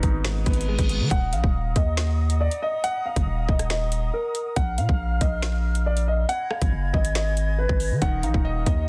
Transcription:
Already playing: felt piano G#2 B3 D#4
0.03 808-style bass G#1, felt piano D#4, kick, closed hi-hat
0.24 felt piano G#2, finger snap, snare, closed hi-hat, reverse cymbal
0.46 808-style bass G#1, felt piano B3, kick, closed hi-hat
0.53 closed hi-hat
0.61 closed hi-hat
0.68 felt piano G#3
0.79 808-style bass G#1, kick, closed hi-hat
0.89 felt piano G#3, closed hi-hat
1.00 808-style bass D#3
1.11 808-style bass D#1, flute section D#5 F#5 A#5 D#6, grand piano F#5, kick, closed hi-hat
1.33 808-style bass A#1, grand piano F5, closed hi-hat
1.44 808-style bass D#1, kick
1.76 808-style bass D#2, grand piano D#5, kick, closed hi-hat
1.97 finger snap, snare, closed hi-hat
2.30 closed hi-hat
2.41 grand piano D5
2.51 closed hi-hat
2.62 grand piano D#5
2.84 grand piano F#5, closed hi-hat
3.06 grand piano F5
3.16 808-style bass F#1, kick, closed hi-hat
3.27 808-style bass D#1
3.49 808-style bass D#1, grand piano D#5, kick
3.59 cross-stick, closed hi-hat
3.70 grand piano D#5, finger snap, snare, closed hi-hat
3.92 closed hi-hat
4.14 grand piano A#4
4.35 closed hi-hat
4.56 808-style bass A#1, flute section F5 F6, grand piano F#5, kick, closed hi-hat
4.78 808-style bass A#2, grand piano F5, closed hi-hat
4.89 808-style bass A#1, kick
5.21 808-style bass A#1, grand piano D#5, kick, closed hi-hat
5.42 finger snap, snare, closed hi-hat
5.75 closed hi-hat
5.86 grand piano D5
5.97 closed hi-hat
6.08 grand piano D#5
6.29 flute section D#5 G#5 B5 G#6, grand piano F#5, closed hi-hat
6.50 grand piano F5, cross-stick
6.62 808-style bass G#1, kick, closed hi-hat
6.72 808-style bass F#1
6.93 808-style bass G#1, grand piano D#5, kick
7.05 closed hi-hat
7.15 grand piano D#5, finger snap, snare, closed hi-hat
7.37 closed hi-hat
7.58 grand piano B4
7.69 808-style bass G#1, kick
7.80 open hi-hat
7.91 808-style bass D#3
8.02 808-style bass D#1, felt piano D#3, grand piano F#5, flute section F#5 A#5 D#6, kick, closed hi-hat
8.23 808-style bass A#1, felt piano D#4, grand piano F5, closed hi-hat
8.34 808-style bass D#1, kick
8.45 felt piano D#5
8.66 808-style bass D#2, grand piano D#5, felt piano D#5, kick, closed hi-hat

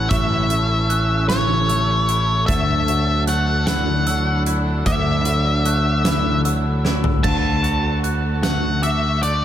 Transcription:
Already playing: string section E3 C#4 A4, clean electric guitar A3 C#4 E4, glockenspiel E6
0.09 picked electric bass A1, clean electric guitar A2, lead electric guitar E5, glockenspiel C#6, kick, closed hi-hat
0.50 clean electric guitar A3, closed hi-hat
0.90 clean electric guitar C#4, glockenspiel F#6, closed hi-hat
1.29 clean electric guitar E4, lead electric guitar C#5, snare, closed hi-hat
1.68 clean electric guitar A3, glockenspiel E6, closed hi-hat
2.09 clean electric guitar E4, closed hi-hat
2.46 picked electric bass D2, clean electric guitar D3, string section F#3 D4, lead electric guitar E5, glockenspiel A6, kick, closed hi-hat
2.88 clean electric guitar F#3, closed hi-hat
3.27 clean electric guitar A3, lead electric guitar F#5, glockenspiel F#6, closed hi-hat
3.67 clean electric guitar E4, lead electric guitar F#5, snare, closed hi-hat
4.07 clean electric guitar F#3, glockenspiel E6, closed hi-hat
4.46 clean electric guitar E4, closed hi-hat
4.86 picked electric bass D2, clean electric guitar D3, lead electric guitar E5, glockenspiel D6, kick, closed hi-hat
5.25 clean electric guitar F#3, closed hi-hat
5.65 clean electric guitar A3, glockenspiel F#6, closed hi-hat
6.05 clean electric guitar E4, snare, closed hi-hat
6.45 clean electric guitar F#3, glockenspiel E6, closed hi-hat
6.84 clean electric guitar E4, snare
7.04 floor tom
7.23 picked electric bass D2, clean electric guitar D3, string section D3 A3 F#4, lead electric guitar A5, glockenspiel A6, kick, crash
7.63 clean electric guitar F#4, closed hi-hat
8.04 glockenspiel F#6, closed hi-hat
8.43 clean electric guitar A3, lead electric guitar F#5, snare, closed hi-hat
8.82 clean electric guitar F#4, lead electric guitar E5, glockenspiel D6, closed hi-hat
9.22 clean electric guitar A3, lead electric guitar D5, closed hi-hat

